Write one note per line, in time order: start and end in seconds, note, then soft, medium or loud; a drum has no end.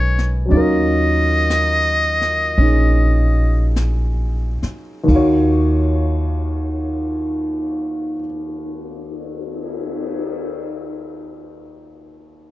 0.00 0.46 B1 medium
0.00 0.50 G#3 soft
0.00 0.50 B3 soft
0.00 0.47 C#4 soft
0.00 0.49 D#4 soft
0.00 0.52 F#4 soft
0.00 0.51 G#4 soft
0.00 0.52 A#4 soft
0.00 0.52 B4 soft
0.00 0.31 C#5 medium
0.18 snare soft
0.46 5.06 F#3 soft
0.46 2.57 C#4 soft
0.50 2.54 D#2 medium
0.50 2.58 D#4 soft
0.50 5.08 F4 soft
0.50 3.73 D#5 medium
0.50 brush sweep soft
0.57 5.12 A#4 soft
1.50 snare soft
1.50 hi-hat pedal soft
2.21 snare soft
2.58 4.58 A#1 medium
2.58 5.09 C#4 soft
2.58 5.10 D#4 soft
2.58 5.11 G#4 soft
2.58 brush sweep soft
3.76 snare soft
3.76 hi-hat pedal soft
4.63 muted upright bass stroke soft
4.63 snare soft
5.04 8.12 D#2 soft
5.04 8.15 D#3 soft
5.08 8.13 D#2 medium
5.08 8.18 F4 soft
5.08 kick soft
5.08 ride soft
5.13 8.22 F#4 soft
5.13 8.24 C#5 soft
6.01 cymbal swell soft